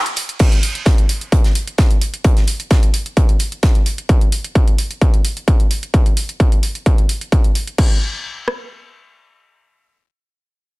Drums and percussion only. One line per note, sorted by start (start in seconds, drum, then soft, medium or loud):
0.06 closed hi-hat medium
0.16 closed hi-hat medium
0.16 open hi-hat loud
0.29 closed hi-hat medium
0.39 kick loud
0.39 closed hi-hat medium
0.39 crash medium
0.52 closed hi-hat medium
0.52 closed hi-hat soft
0.63 closed hi-hat medium
0.63 open hi-hat loud
0.75 closed hi-hat medium
0.86 kick loud
0.86 snare loud
0.86 closed hi-hat medium
0.98 closed hi-hat medium
1.09 closed hi-hat medium
1.09 open hi-hat loud
1.21 closed hi-hat medium
1.32 kick loud
1.32 closed hi-hat medium
1.44 snare medium
1.44 closed hi-hat medium
1.55 closed hi-hat medium
1.55 open hi-hat loud
1.67 closed hi-hat medium
1.78 kick loud
1.78 snare loud
1.78 closed hi-hat medium
1.91 closed hi-hat medium
2.01 closed hi-hat medium
2.01 open hi-hat loud
2.14 closed hi-hat medium
2.24 kick loud
2.24 closed hi-hat medium
2.37 snare soft
2.37 closed hi-hat medium
2.47 closed hi-hat medium
2.47 open hi-hat loud
2.60 closed hi-hat medium
2.71 kick loud
2.71 snare loud
2.71 closed hi-hat medium
2.83 closed hi-hat medium
2.94 closed hi-hat medium
2.94 open hi-hat loud
3.06 closed hi-hat medium
3.17 kick loud
3.17 closed hi-hat medium
3.29 closed hi-hat medium
3.39 closed hi-hat medium
3.39 open hi-hat loud
3.52 closed hi-hat medium
3.63 kick loud
3.63 snare loud
3.63 closed hi-hat medium
3.75 closed hi-hat medium
3.86 closed hi-hat medium
3.86 open hi-hat loud
3.98 closed hi-hat medium
4.09 kick loud
4.09 closed hi-hat medium
4.21 closed hi-hat medium
4.32 open hi-hat loud
4.44 closed hi-hat medium
4.55 kick loud
4.55 closed hi-hat medium
4.68 closed hi-hat medium
4.78 open hi-hat loud
4.91 closed hi-hat medium
5.01 kick loud
5.01 closed hi-hat medium
5.14 closed hi-hat medium
5.25 open hi-hat loud
5.37 closed hi-hat medium
5.48 kick loud
5.48 closed hi-hat medium
5.60 closed hi-hat medium
5.71 open hi-hat loud
5.83 closed hi-hat medium
5.94 kick loud
5.94 closed hi-hat medium
6.06 closed hi-hat soft
6.17 open hi-hat loud
6.29 closed hi-hat medium
6.40 kick loud
6.40 closed hi-hat medium
6.52 closed hi-hat medium
6.63 open hi-hat loud
6.75 closed hi-hat soft
6.86 kick loud
6.86 closed hi-hat medium
6.98 closed hi-hat soft
7.09 open hi-hat loud
7.21 closed hi-hat soft
7.32 kick loud
7.32 closed hi-hat medium
7.44 closed hi-hat soft
7.55 open hi-hat loud
7.67 closed hi-hat soft
7.78 kick loud
7.78 crash medium
8.48 cross-stick medium